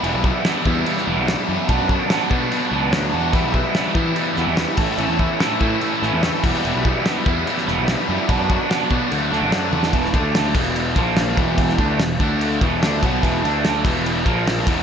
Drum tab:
CC |x---x---x---x---|x---x---x---x---|x---x---x---x-x-|x---x---x---x-x-|
SD |----o----o--o---|----o-------o---|----o-----o-o---|----o-----o-o---|
T1 |----------------|----------------|----------------|----------------|
BD |--o---o---------|o-o---o---------|o-o---o-------o-|--o---o-------o-|

CC |x---x---x---x---|x---x---x---x---|x-x-x-x-x-x-x-x-|x-x-x-x-x-x-x-x-|
SD |----o----oo-o---|----o-----o-o--o|-o--o-------o---|-o--o-------o---|
T1 |----------------|--------------o-|----------------|----------------|
BD |--o---o---------|o-o---o---------|o-o---o---o---o-|o-o---o---o---o-|

CC |x-x-x-x-x-x-x-x-|
SD |----o-------o---|
T1 |----------------|
BD |o-----o---o---o-|